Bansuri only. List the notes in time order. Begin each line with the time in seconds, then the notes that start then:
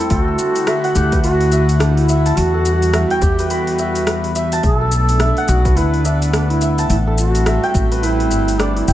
Already playing: E4
0.10 F#4
0.95 G4
1.23 F#4
1.79 D4
1.97 E4
2.36 F#4
3.21 G4
3.50 F#4
4.64 G#4
4.77 A4
5.48 F#4
5.76 E4
6.05 D4
6.32 D4
6.49 E4
6.89 E4
7.18 F#4
7.98 F#4
8.03 E4
8.59 D4
8.76 E4